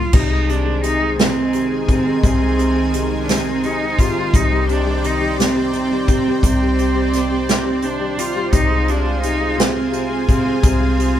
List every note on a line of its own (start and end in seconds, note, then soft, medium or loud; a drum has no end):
0.00 0.16 F4 medium
0.13 2.19 C2 loud
0.13 0.47 C3 medium
0.13 8.50 D#3 medium
0.13 0.51 D#4 loud
0.13 4.29 G#4 medium
0.13 11.20 C5 medium
0.13 4.30 G#5 medium
0.13 kick loud
0.13 crash loud
0.30 0.63 G#3 medium
0.48 0.81 C3 medium
0.48 0.84 D4 loud
0.48 closed hi-hat soft
0.65 0.99 G#3 medium
0.83 1.17 C3 medium
0.83 1.17 D#4 loud
0.83 closed hi-hat medium
1.01 1.34 G#3 medium
1.18 1.52 C3 medium
1.18 1.84 C4 medium
1.18 snare loud
1.18 closed hi-hat medium
1.36 1.70 G#3 medium
1.53 1.87 C3 medium
1.53 closed hi-hat soft
1.71 2.04 G#3 medium
1.89 2.21 C3 medium
1.89 2.21 C4 loud
1.89 kick medium
1.89 closed hi-hat medium
2.06 2.39 G#3 medium
2.23 4.29 C2 medium
2.23 2.56 C3 medium
2.23 3.18 C4 loud
2.23 kick loud
2.23 closed hi-hat medium
2.41 2.74 G#3 medium
2.58 2.92 C3 medium
2.58 closed hi-hat soft
2.75 3.10 G#3 medium
2.94 3.27 C3 medium
2.94 closed hi-hat medium
3.11 3.45 G#3 medium
3.23 3.31 D4 medium
3.29 3.63 C3 medium
3.29 3.66 C4 medium
3.29 snare loud
3.29 closed hi-hat medium
3.46 3.81 G#3 medium
3.63 3.99 C3 medium
3.63 4.00 D#4 medium
3.63 closed hi-hat medium
3.82 4.16 G#3 medium
3.99 4.33 C3 medium
3.99 4.37 F4 loud
3.99 kick medium
3.99 closed hi-hat medium
4.17 4.33 G#3 medium
4.33 6.39 C2 loud
4.33 4.68 C3 medium
4.33 4.69 D#4 loud
4.33 6.41 D5 medium
4.33 8.49 G5 medium
4.33 kick loud
4.33 closed hi-hat medium
4.52 4.84 G3 medium
4.69 5.02 C3 medium
4.69 5.07 D4 medium
4.69 closed hi-hat soft
4.86 5.19 G3 medium
5.03 5.36 C3 medium
5.03 5.39 D#4 loud
5.03 closed hi-hat medium
5.21 5.54 G3 medium
5.38 5.71 C3 medium
5.38 5.72 C4 loud
5.38 snare loud
5.38 closed hi-hat medium
5.56 5.90 G3 medium
5.73 6.07 C3 medium
5.73 6.06 C4 medium
5.73 closed hi-hat medium
5.91 6.26 G3 medium
6.08 6.43 C3 medium
6.08 6.42 C4 loud
6.08 kick medium
6.08 closed hi-hat medium
6.27 6.60 G3 medium
6.43 8.49 C2 medium
6.43 6.77 C3 medium
6.43 7.45 C4 loud
6.43 8.51 D5 medium
6.43 kick loud
6.43 closed hi-hat medium
6.61 6.94 G3 medium
6.78 7.11 C3 medium
6.78 closed hi-hat soft
6.95 7.29 G3 medium
7.13 7.47 C3 medium
7.13 snare soft
7.13 closed hi-hat medium
7.30 7.63 G3 medium
7.48 7.81 C3 medium
7.48 7.86 C4 medium
7.48 snare loud
7.48 closed hi-hat medium
7.65 7.99 G3 soft
7.82 8.16 C3 medium
7.82 8.21 D4 medium
7.82 closed hi-hat soft
8.00 8.34 G3 medium
8.17 8.50 C3 medium
8.17 8.53 F4 loud
8.17 closed hi-hat medium
8.35 8.53 G3 medium
8.52 10.59 C2 medium
8.52 8.87 C3 medium
8.52 8.91 D#4 loud
8.52 11.20 F4 medium
8.52 11.20 G#4 medium
8.52 11.20 G#5 medium
8.52 kick loud
8.52 closed hi-hat medium
8.70 9.03 G#3 medium
8.88 9.21 C3 medium
8.88 9.22 D4 loud
8.88 closed hi-hat soft
9.05 9.38 G#3 medium
9.23 9.55 C3 medium
9.23 9.60 D#4 loud
9.23 closed hi-hat medium
9.40 9.73 G#3 medium
9.57 9.90 C3 medium
9.57 9.93 C4 loud
9.57 snare loud
9.57 closed hi-hat medium
9.74 10.08 G#3 medium
9.91 10.26 C3 medium
9.91 10.27 C4 medium
9.91 closed hi-hat soft
10.09 10.44 G#3 medium
10.27 10.61 C3 medium
10.27 10.62 C4 medium
10.27 kick medium
10.27 closed hi-hat medium
10.45 10.78 G#3 medium
10.63 11.20 C2 medium
10.63 10.96 C3 medium
10.63 11.20 C4 medium
10.63 kick loud
10.63 closed hi-hat medium
10.80 11.14 G#3 medium
10.98 11.20 C3 medium
10.98 closed hi-hat medium
11.16 11.20 G#3 medium